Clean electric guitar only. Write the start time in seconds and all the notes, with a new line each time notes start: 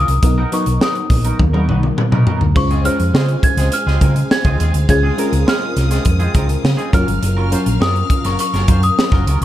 0.09 muted clean electric guitar stroke
0.23 muted clean electric guitar stroke
0.38 F#3 B3 D#4 A#4
0.52 F#3 B3 D#4 B4
0.67 muted clean electric guitar stroke
0.81 F#3 B3 D#4 A#4
0.96 muted clean electric guitar stroke
1.10 muted clean electric guitar stroke
1.25 F#3 B3 D#4 A#4
1.39 muted clean electric guitar stroke
1.53 F#3 B3 D#4 A#4
1.68 F#3 B3 D#4 B4
1.83 muted clean electric guitar stroke
1.97 muted clean electric guitar stroke
2.12 F#3 B3 D#4 A#4
2.27 F#3 B3 D#4 A#4
2.41 muted clean electric guitar stroke
2.56 muted clean electric guitar stroke
2.71 G#3 C4 F4 G#4
2.85 G#3 C4 F4 A#4
3.00 muted clean electric guitar stroke
3.14 G#3 C4 F4 G#4
3.29 muted clean electric guitar stroke
3.43 muted clean electric guitar stroke
3.58 G#3 C4 F4 G#4
3.72 muted clean electric guitar stroke
3.87 G#3 C4 F4 G#4
4.01 G#3 C4 F4 A#4
4.16 muted clean electric guitar stroke
4.30 muted clean electric guitar stroke
4.45 G#3 C4 F4 G#4
4.59 G#3 C4 F4 G#4
4.75 muted clean electric guitar stroke
4.88 muted clean electric guitar stroke
5.03 G#3 C4 F4 G#4
5.18 G#3 C4 F4 A#4
5.32 muted clean electric guitar stroke
5.47 G#3 C4 F4 G#4
5.62 muted clean electric guitar stroke
5.76 muted clean electric guitar stroke
5.91 G#3 C4 F4 G#4
6.05 muted clean electric guitar stroke
6.19 G#3 C4 F4 G#4
6.34 G#3 C4 F4 A#4
6.48 muted clean electric guitar stroke
6.63 muted clean electric guitar stroke
6.77 G#3 C4 F4 G#4
6.92 F#3 C#4 F4 A#4
7.07 muted clean electric guitar stroke
7.22 muted clean electric guitar stroke
7.37 F#3 C#4 F4 A#4
7.51 F#3 C#4 F4 C5
7.66 muted clean electric guitar stroke
7.80 F#3 C#4 F4 A#4
7.95 muted clean electric guitar stroke
8.10 muted clean electric guitar stroke
8.25 F#3 C#4 F4 A#4
8.39 muted clean electric guitar stroke
8.54 F#3 C#4 F4 A#4
8.68 F#3 C#4 F4 C5
8.83 muted clean electric guitar stroke
8.98 muted clean electric guitar stroke
9.12 F#3 C#4 F4 A#4
9.27 F#3 C#4 F4 A#4
9.41 muted clean electric guitar stroke